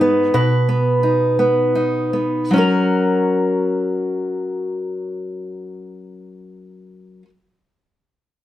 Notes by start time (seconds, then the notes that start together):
Already playing: G#2 D#4 G#4
0.01 B3
0.34 B2 B4
0.69 B3
1.03 D#4
1.39 B3
1.75 D#4
2.13 B3
2.51 F#3 C#4
2.56 F#4 A#4